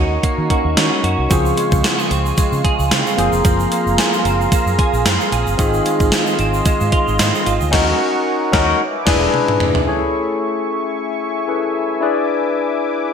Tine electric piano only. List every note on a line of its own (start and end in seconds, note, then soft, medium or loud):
0.00 0.47 C#4 medium
0.00 0.47 D#4 medium
0.00 0.48 F#4 medium
0.00 0.48 A#4 medium
0.50 1.30 C#4 medium
0.50 1.30 D#4 soft
0.50 1.31 F#4 soft
0.50 1.31 A#4 medium
1.30 3.14 C#3 medium
1.30 3.14 C4 medium
1.30 3.14 F4 medium
1.30 3.15 G#4 medium
3.17 5.28 A#3 medium
3.17 5.28 C4 medium
3.17 5.28 F4 medium
3.17 5.29 G#4 medium
5.58 7.69 C4 medium
5.58 7.69 D#4 medium
5.58 7.69 F4 medium
5.58 7.70 G#4 medium
7.71 7.91 C#4 medium
7.71 7.91 D#4 loud
7.71 7.92 F#4 loud
7.71 7.92 A#4 loud
8.52 8.71 C#4 loud
8.52 8.72 D#4 medium
8.52 8.72 F#4 loud
8.52 8.73 A#4 medium
9.06 9.25 D4 loud
9.06 9.25 E4 medium
9.06 9.26 G#4 loud
9.06 9.26 B4 loud
9.87 11.45 C#4 medium
9.87 11.45 E4 medium
9.87 11.45 G#4 medium
9.87 11.45 A4 medium
9.87 11.46 C#5 medium
11.48 12.02 C#4 medium
11.48 12.00 E4 medium
11.48 12.00 G#4 medium
11.48 12.02 A4 medium
11.48 12.01 B4 medium
12.00 13.13 D4 medium
12.00 13.13 E4 medium
12.00 13.13 G#4 medium
12.00 13.13 B4 medium
12.00 13.13 D5 medium